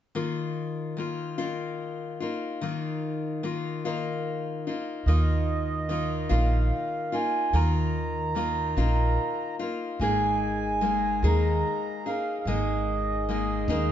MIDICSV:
0, 0, Header, 1, 4, 480
1, 0, Start_track
1, 0, Tempo, 820793
1, 87, Time_signature, 6, 3, 24, 8
1, 8140, End_track
2, 0, Start_track
2, 0, Title_t, "Accordion"
2, 0, Program_c, 0, 21
2, 2960, Note_on_c, 0, 75, 77
2, 3688, Note_on_c, 0, 77, 75
2, 3707, Note_off_c, 0, 75, 0
2, 4176, Note_on_c, 0, 80, 84
2, 4183, Note_off_c, 0, 77, 0
2, 4416, Note_on_c, 0, 82, 96
2, 4420, Note_off_c, 0, 80, 0
2, 5590, Note_off_c, 0, 82, 0
2, 5857, Note_on_c, 0, 80, 96
2, 6587, Note_on_c, 0, 82, 89
2, 6595, Note_off_c, 0, 80, 0
2, 7057, Note_on_c, 0, 77, 76
2, 7073, Note_off_c, 0, 82, 0
2, 7239, Note_off_c, 0, 77, 0
2, 7251, Note_on_c, 0, 77, 54
2, 7291, Note_off_c, 0, 77, 0
2, 7296, Note_on_c, 0, 75, 80
2, 8140, Note_off_c, 0, 75, 0
2, 8140, End_track
3, 0, Start_track
3, 0, Title_t, "Steel-string acoustic guitar"
3, 0, Program_c, 1, 25
3, 87, Note_on_c, 1, 51, 52
3, 90, Note_on_c, 1, 58, 53
3, 92, Note_on_c, 1, 63, 51
3, 94, Note_on_c, 1, 65, 64
3, 564, Note_off_c, 1, 51, 0
3, 566, Note_on_c, 1, 51, 49
3, 572, Note_off_c, 1, 58, 0
3, 572, Note_off_c, 1, 63, 0
3, 574, Note_on_c, 1, 58, 43
3, 574, Note_on_c, 1, 63, 49
3, 580, Note_off_c, 1, 65, 0
3, 582, Note_on_c, 1, 65, 50
3, 799, Note_off_c, 1, 65, 0
3, 801, Note_off_c, 1, 63, 0
3, 805, Note_off_c, 1, 58, 0
3, 806, Note_on_c, 1, 65, 58
3, 807, Note_off_c, 1, 51, 0
3, 808, Note_on_c, 1, 63, 49
3, 812, Note_on_c, 1, 58, 46
3, 815, Note_on_c, 1, 51, 50
3, 1286, Note_off_c, 1, 65, 0
3, 1289, Note_on_c, 1, 65, 47
3, 1294, Note_off_c, 1, 63, 0
3, 1296, Note_on_c, 1, 63, 42
3, 1298, Note_off_c, 1, 58, 0
3, 1301, Note_on_c, 1, 58, 37
3, 1306, Note_off_c, 1, 51, 0
3, 1528, Note_off_c, 1, 58, 0
3, 1529, Note_off_c, 1, 65, 0
3, 1529, Note_on_c, 1, 51, 58
3, 1530, Note_off_c, 1, 63, 0
3, 1535, Note_on_c, 1, 58, 53
3, 1537, Note_on_c, 1, 63, 61
3, 1541, Note_on_c, 1, 65, 63
3, 2000, Note_off_c, 1, 51, 0
3, 2002, Note_off_c, 1, 58, 0
3, 2007, Note_on_c, 1, 51, 49
3, 2008, Note_off_c, 1, 63, 0
3, 2009, Note_on_c, 1, 58, 49
3, 2010, Note_off_c, 1, 65, 0
3, 2015, Note_on_c, 1, 63, 49
3, 2017, Note_on_c, 1, 65, 52
3, 2244, Note_off_c, 1, 65, 0
3, 2248, Note_off_c, 1, 51, 0
3, 2248, Note_off_c, 1, 58, 0
3, 2250, Note_off_c, 1, 63, 0
3, 2251, Note_on_c, 1, 65, 61
3, 2255, Note_on_c, 1, 58, 49
3, 2257, Note_on_c, 1, 63, 58
3, 2259, Note_on_c, 1, 51, 45
3, 2723, Note_off_c, 1, 65, 0
3, 2725, Note_off_c, 1, 63, 0
3, 2730, Note_on_c, 1, 65, 43
3, 2732, Note_off_c, 1, 58, 0
3, 2732, Note_on_c, 1, 63, 41
3, 2735, Note_off_c, 1, 51, 0
3, 2741, Note_on_c, 1, 58, 38
3, 2964, Note_off_c, 1, 58, 0
3, 2965, Note_off_c, 1, 63, 0
3, 2968, Note_on_c, 1, 51, 55
3, 2969, Note_off_c, 1, 65, 0
3, 2971, Note_on_c, 1, 58, 60
3, 2972, Note_on_c, 1, 63, 62
3, 2976, Note_on_c, 1, 65, 59
3, 3441, Note_off_c, 1, 51, 0
3, 3444, Note_on_c, 1, 51, 46
3, 3445, Note_off_c, 1, 58, 0
3, 3447, Note_on_c, 1, 58, 49
3, 3449, Note_off_c, 1, 65, 0
3, 3450, Note_off_c, 1, 63, 0
3, 3452, Note_on_c, 1, 63, 55
3, 3456, Note_on_c, 1, 65, 55
3, 3673, Note_off_c, 1, 65, 0
3, 3680, Note_on_c, 1, 65, 60
3, 3681, Note_off_c, 1, 63, 0
3, 3684, Note_off_c, 1, 58, 0
3, 3685, Note_off_c, 1, 51, 0
3, 3688, Note_on_c, 1, 63, 53
3, 3691, Note_on_c, 1, 58, 52
3, 3692, Note_on_c, 1, 51, 48
3, 4158, Note_off_c, 1, 65, 0
3, 4165, Note_on_c, 1, 65, 45
3, 4168, Note_off_c, 1, 63, 0
3, 4170, Note_on_c, 1, 63, 46
3, 4171, Note_off_c, 1, 51, 0
3, 4173, Note_off_c, 1, 58, 0
3, 4175, Note_on_c, 1, 58, 37
3, 4402, Note_off_c, 1, 58, 0
3, 4406, Note_off_c, 1, 63, 0
3, 4406, Note_on_c, 1, 51, 62
3, 4408, Note_off_c, 1, 65, 0
3, 4409, Note_on_c, 1, 58, 62
3, 4413, Note_on_c, 1, 63, 61
3, 4416, Note_on_c, 1, 65, 68
3, 4876, Note_off_c, 1, 51, 0
3, 4883, Note_on_c, 1, 51, 46
3, 4886, Note_off_c, 1, 58, 0
3, 4888, Note_on_c, 1, 58, 54
3, 4889, Note_off_c, 1, 63, 0
3, 4890, Note_off_c, 1, 65, 0
3, 4891, Note_on_c, 1, 63, 52
3, 4897, Note_on_c, 1, 65, 60
3, 5124, Note_off_c, 1, 65, 0
3, 5126, Note_off_c, 1, 63, 0
3, 5127, Note_off_c, 1, 51, 0
3, 5129, Note_off_c, 1, 58, 0
3, 5131, Note_on_c, 1, 65, 68
3, 5133, Note_on_c, 1, 63, 62
3, 5140, Note_on_c, 1, 51, 48
3, 5140, Note_on_c, 1, 58, 58
3, 5604, Note_off_c, 1, 65, 0
3, 5611, Note_off_c, 1, 63, 0
3, 5611, Note_on_c, 1, 65, 55
3, 5614, Note_on_c, 1, 63, 46
3, 5615, Note_off_c, 1, 51, 0
3, 5621, Note_off_c, 1, 58, 0
3, 5623, Note_on_c, 1, 58, 39
3, 5850, Note_off_c, 1, 58, 0
3, 5850, Note_off_c, 1, 63, 0
3, 5850, Note_off_c, 1, 65, 0
3, 5853, Note_on_c, 1, 56, 60
3, 5857, Note_on_c, 1, 58, 58
3, 5857, Note_on_c, 1, 63, 58
3, 5861, Note_on_c, 1, 68, 62
3, 6316, Note_off_c, 1, 56, 0
3, 6323, Note_on_c, 1, 56, 53
3, 6327, Note_off_c, 1, 58, 0
3, 6329, Note_off_c, 1, 63, 0
3, 6329, Note_on_c, 1, 58, 51
3, 6331, Note_off_c, 1, 68, 0
3, 6336, Note_on_c, 1, 63, 52
3, 6338, Note_on_c, 1, 68, 54
3, 6566, Note_off_c, 1, 68, 0
3, 6567, Note_off_c, 1, 56, 0
3, 6569, Note_off_c, 1, 63, 0
3, 6570, Note_off_c, 1, 58, 0
3, 6573, Note_on_c, 1, 68, 68
3, 6576, Note_on_c, 1, 63, 60
3, 6578, Note_on_c, 1, 56, 47
3, 6578, Note_on_c, 1, 58, 50
3, 7045, Note_off_c, 1, 68, 0
3, 7049, Note_off_c, 1, 63, 0
3, 7052, Note_on_c, 1, 68, 43
3, 7054, Note_off_c, 1, 56, 0
3, 7056, Note_on_c, 1, 63, 39
3, 7061, Note_off_c, 1, 58, 0
3, 7063, Note_on_c, 1, 58, 37
3, 7288, Note_off_c, 1, 58, 0
3, 7291, Note_off_c, 1, 68, 0
3, 7293, Note_off_c, 1, 63, 0
3, 7293, Note_on_c, 1, 56, 64
3, 7295, Note_on_c, 1, 58, 60
3, 7299, Note_on_c, 1, 63, 62
3, 7299, Note_on_c, 1, 68, 64
3, 7762, Note_off_c, 1, 56, 0
3, 7769, Note_on_c, 1, 56, 50
3, 7771, Note_off_c, 1, 58, 0
3, 7772, Note_off_c, 1, 63, 0
3, 7774, Note_on_c, 1, 58, 53
3, 7775, Note_off_c, 1, 68, 0
3, 7779, Note_on_c, 1, 63, 48
3, 7783, Note_on_c, 1, 68, 57
3, 8000, Note_off_c, 1, 68, 0
3, 8003, Note_off_c, 1, 63, 0
3, 8006, Note_off_c, 1, 58, 0
3, 8007, Note_on_c, 1, 68, 63
3, 8008, Note_off_c, 1, 56, 0
3, 8010, Note_on_c, 1, 63, 67
3, 8013, Note_on_c, 1, 58, 58
3, 8015, Note_on_c, 1, 56, 61
3, 8140, Note_off_c, 1, 56, 0
3, 8140, Note_off_c, 1, 58, 0
3, 8140, Note_off_c, 1, 63, 0
3, 8140, Note_off_c, 1, 68, 0
3, 8140, End_track
4, 0, Start_track
4, 0, Title_t, "Upright bass"
4, 0, Program_c, 2, 32
4, 2960, Note_on_c, 2, 39, 71
4, 3662, Note_off_c, 2, 39, 0
4, 3686, Note_on_c, 2, 34, 85
4, 3916, Note_off_c, 2, 34, 0
4, 4403, Note_on_c, 2, 39, 74
4, 5103, Note_off_c, 2, 39, 0
4, 5127, Note_on_c, 2, 34, 86
4, 5356, Note_off_c, 2, 34, 0
4, 5845, Note_on_c, 2, 32, 76
4, 6544, Note_off_c, 2, 32, 0
4, 6565, Note_on_c, 2, 39, 88
4, 6796, Note_off_c, 2, 39, 0
4, 7283, Note_on_c, 2, 32, 74
4, 7983, Note_off_c, 2, 32, 0
4, 8000, Note_on_c, 2, 39, 90
4, 8140, Note_off_c, 2, 39, 0
4, 8140, End_track
0, 0, End_of_file